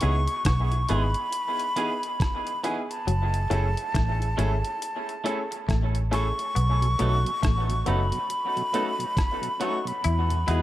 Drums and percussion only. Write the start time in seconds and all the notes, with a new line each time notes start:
0.01 closed hi-hat
0.28 closed hi-hat
0.45 kick, cross-stick, closed hi-hat
0.72 closed hi-hat
0.89 closed hi-hat
1.14 closed hi-hat
1.32 closed hi-hat
1.59 closed hi-hat
1.77 closed hi-hat
2.03 closed hi-hat
2.20 kick, cross-stick, closed hi-hat
2.47 closed hi-hat
2.64 closed hi-hat
2.91 closed hi-hat
3.08 closed hi-hat
3.34 closed hi-hat
3.51 closed hi-hat
3.77 closed hi-hat
3.95 kick, cross-stick, closed hi-hat
4.22 closed hi-hat
4.39 closed hi-hat
4.65 closed hi-hat
4.82 closed hi-hat
5.09 closed hi-hat
5.26 closed hi-hat
5.52 closed hi-hat
5.69 kick, cross-stick, closed hi-hat
5.95 closed hi-hat
6.13 closed hi-hat
6.39 closed hi-hat
6.56 closed hi-hat
6.82 closed hi-hat
6.99 closed hi-hat
7.26 closed hi-hat
7.43 kick, cross-stick, closed hi-hat
7.70 closed hi-hat
7.86 closed hi-hat
8.12 closed hi-hat
8.30 closed hi-hat
8.57 closed hi-hat
8.74 closed hi-hat
9.00 closed hi-hat
9.17 kick, cross-stick, closed hi-hat
9.43 closed hi-hat
9.61 closed hi-hat
9.87 closed hi-hat
10.04 closed hi-hat
10.30 closed hi-hat
10.48 closed hi-hat